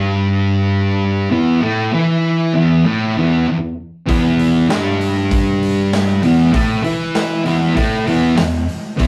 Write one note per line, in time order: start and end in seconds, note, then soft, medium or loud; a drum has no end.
0.00 1.30 G2 medium
0.00 1.33 G3 medium
1.31 1.62 E2 medium
1.31 1.63 E3 medium
1.62 1.92 A2 loud
1.62 1.93 A3 medium
1.93 2.53 E3 medium
1.93 2.55 E4 loud
2.53 2.85 E2 medium
2.53 2.85 E3 medium
2.85 3.15 A2 medium
2.85 3.16 A3 loud
3.17 3.46 E2 medium
3.17 3.47 E3 medium
3.47 3.72 E2 medium
4.06 4.68 E2 medium
4.06 4.69 E3 loud
4.06 kick loud
4.06 open hi-hat medium
4.39 open hi-hat soft
4.69 6.22 G2 medium
4.69 6.23 G3 medium
4.69 snare loud
4.69 open hi-hat medium
5.01 open hi-hat medium
5.31 kick loud
5.31 open hi-hat medium
5.63 open hi-hat medium
5.93 snare loud
5.93 open hi-hat medium
6.23 6.53 E2 medium
6.23 6.54 E3 medium
6.23 open hi-hat medium
6.52 6.83 A2 loud
6.52 6.84 A3 loud
6.52 kick loud
6.52 open hi-hat medium
6.83 7.45 E3 medium
6.83 7.46 E4 medium
6.83 open hi-hat medium
7.15 snare loud
7.15 open hi-hat medium
7.44 7.75 E2 medium
7.44 7.76 E3 medium
7.44 open hi-hat medium
7.74 8.06 A2 medium
7.74 8.06 A3 loud
7.74 kick loud
7.74 open hi-hat medium
8.06 8.35 E2 medium
8.06 8.38 E3 medium
8.06 open hi-hat medium
8.36 8.62 E2 medium
8.36 snare loud
8.36 open hi-hat medium
8.69 open hi-hat medium
8.97 9.07 E2 medium
8.97 9.07 E3 loud
8.97 kick loud
8.97 open hi-hat medium